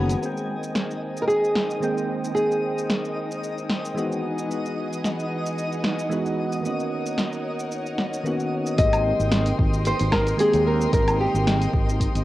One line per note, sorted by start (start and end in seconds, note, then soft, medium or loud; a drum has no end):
0.00 0.14 F#1 loud
0.00 0.18 D#3 medium
0.00 0.22 G#3 medium
0.00 0.21 A#3 medium
0.00 0.23 B3 medium
0.00 0.23 C#4 medium
0.00 0.24 F#4 loud
0.00 0.19 C#5 medium
0.00 0.20 A#5 medium
0.00 0.20 B5 medium
0.00 0.20 D#6 medium
0.00 0.23 G#6 medium
0.09 open hi-hat soft
0.09 shaker medium
0.18 1.77 D#3 medium
0.18 1.79 G#3 medium
0.18 4.19 G#3 medium
0.18 1.79 A#3 medium
0.18 4.19 D#4 medium
0.18 4.20 C5 medium
0.18 4.19 G5 medium
0.22 1.80 C4 medium
0.22 8.77 D#4 medium
0.22 4.20 A#4 medium
0.22 8.77 D#5 medium
0.22 1.81 G5 medium
0.22 shaker soft
0.37 shaker soft
0.63 shaker medium
0.75 snare medium
0.75 shaker soft
0.91 shaker soft
1.17 shaker medium
1.22 1.27 A#4 medium
1.28 2.33 G#4 loud
1.28 shaker soft
1.44 shaker soft
1.56 snare medium
1.71 shaker medium
1.80 2.31 D#3 medium
1.80 2.32 G#3 medium
1.80 2.33 A#3 medium
1.80 2.33 C4 medium
1.80 2.34 G5 medium
1.80 shaker soft
1.98 shaker soft
2.24 shaker medium
2.32 3.92 D#3 medium
2.32 3.92 G#3 medium
2.32 3.93 A#3 medium
2.32 4.19 G#4 medium
2.37 3.94 C4 medium
2.37 3.95 G5 medium
2.37 shaker medium
2.52 shaker soft
2.78 shaker medium
2.90 snare medium
2.90 shaker medium
3.05 shaker soft
3.31 shaker medium
3.43 shaker soft
3.58 shaker soft
3.69 snare medium
3.85 shaker medium
3.94 4.45 E3 medium
3.94 4.47 G#3 medium
3.94 4.47 B3 medium
3.94 4.48 D#4 medium
3.94 shaker soft
3.99 4.48 F#4 medium
4.12 shaker soft
4.23 6.62 E3 medium
4.23 6.62 G#4 medium
4.23 6.62 B4 medium
4.23 6.62 D#5 medium
4.23 6.62 F#5 medium
4.38 shaker medium
4.46 6.06 E3 medium
4.46 6.07 G#3 medium
4.46 6.08 B3 medium
4.51 6.08 D#4 medium
4.51 6.09 F#4 medium
4.51 shaker medium
4.66 shaker soft
4.93 shaker medium
5.04 snare medium
5.04 shaker medium
5.19 shaker soft
5.46 shaker medium
5.58 shaker soft
5.72 shaker soft
5.84 snare medium
5.99 shaker medium
6.09 6.61 E3 medium
6.09 6.61 G#3 medium
6.09 6.61 B3 medium
6.09 6.62 D#4 medium
6.09 6.62 F#4 medium
6.09 shaker soft
6.26 shaker soft
6.52 shaker medium
6.61 8.20 D#3 medium
6.61 8.21 A#3 medium
6.61 8.22 B3 medium
6.61 8.76 D#4 medium
6.61 8.76 A#4 medium
6.61 8.76 C#5 medium
6.61 8.76 F#5 medium
6.65 8.23 C#4 medium
6.65 8.24 F#4 medium
6.65 shaker medium
6.80 shaker soft
7.06 shaker medium
7.18 snare medium
7.18 shaker medium
7.33 shaker soft
7.60 shaker medium
7.72 shaker soft
7.86 shaker soft
7.98 snare medium
8.14 shaker medium
8.23 8.75 D#3 medium
8.23 8.75 A#3 medium
8.23 8.76 B3 medium
8.23 8.76 C#4 medium
8.23 8.77 F#4 medium
8.23 shaker medium
8.40 shaker soft
8.66 shaker medium
8.76 9.11 G#1 medium
8.76 10.35 D#3 medium
8.76 10.36 G#3 medium
8.76 10.37 A#3 medium
8.76 12.24 D#4 medium
8.76 12.24 A#4 medium
8.76 12.24 D#5 medium
8.76 9.55 D#5 loud
8.76 12.24 G5 medium
8.76 12.24 C6 medium
8.76 kick loud
8.76 open hi-hat medium
8.76 shaker medium
8.82 10.38 C4 medium
8.82 10.39 G4 medium
8.93 open hi-hat soft
8.93 low woodblock medium
8.93 shaker soft
9.20 9.51 G#1 medium
9.20 shaker medium
9.32 snare medium
9.32 open hi-hat medium
9.32 shaker medium
9.46 open hi-hat soft
9.46 shaker soft
9.59 9.91 G#1 medium
9.59 kick loud
9.74 shaker medium
9.85 10.14 C5 loud
9.85 open hi-hat medium
9.85 shaker medium
10.00 10.32 G#1 medium
10.00 open hi-hat soft
10.00 shaker soft
10.12 10.40 A#4 loud
10.12 kick medium
10.12 snare medium
10.12 low woodblock medium
10.27 open hi-hat soft
10.27 shaker medium
10.37 10.88 D#3 medium
10.37 10.89 G#3 medium
10.37 10.90 A#3 medium
10.37 10.90 C4 medium
10.37 10.66 G#4 loud
10.37 open hi-hat medium
10.37 shaker medium
10.41 10.91 G4 loud
10.54 10.85 D#2 medium
10.54 open hi-hat soft
10.54 shaker soft
10.67 10.91 A#4 medium
10.81 shaker medium
10.89 11.25 G#1 medium
10.89 12.24 D#3 medium
10.89 12.24 G#3 medium
10.89 12.24 A#3 medium
10.89 kick loud
10.89 open hi-hat medium
10.94 12.24 C4 medium
10.94 12.24 G4 medium
10.94 11.18 A#4 medium
10.94 shaker medium
11.08 open hi-hat soft
11.08 low woodblock medium
11.08 shaker soft
11.21 11.96 G4 medium
11.34 11.66 G#1 medium
11.34 shaker medium
11.47 snare medium
11.47 open hi-hat medium
11.47 shaker medium
11.62 open hi-hat soft
11.62 shaker soft
11.73 12.06 G#1 medium
11.73 kick loud
11.89 shaker medium
12.00 kick medium
12.00 open hi-hat medium
12.00 shaker medium
12.15 12.24 G#1 medium
12.15 open hi-hat soft
12.15 shaker soft